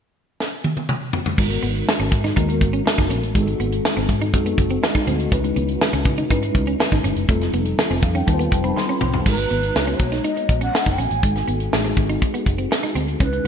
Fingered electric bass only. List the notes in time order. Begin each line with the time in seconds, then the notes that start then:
1.38 G#1
1.63 G#1
2.00 G#1
2.12 G#2
2.37 D#2
2.61 G#1
2.98 F#1
3.10 A#1
3.23 A1
3.35 G#1
3.60 G#1
3.97 G#1
4.09 G#2
4.34 F#2
4.58 F#1
5.07 D2
5.32 C#2
5.56 C#2
5.93 C#2
6.06 C#3
6.30 G#2
6.55 C#2
6.92 G#1
7.04 G1
7.16 F#1
7.29 F1
7.53 F1
7.90 F1
8.03 F2
8.28 D#2
8.52 F1
9.02 C2
9.26 G#1
9.51 G#1
9.75 C#2
10.00 B1
10.49 A#1
10.86 F#1
10.98 A#1
11.11 A1
11.23 G#1
11.48 G#1
11.73 A1
11.97 G#1
12.46 F#1
12.95 D2
13.20 C#2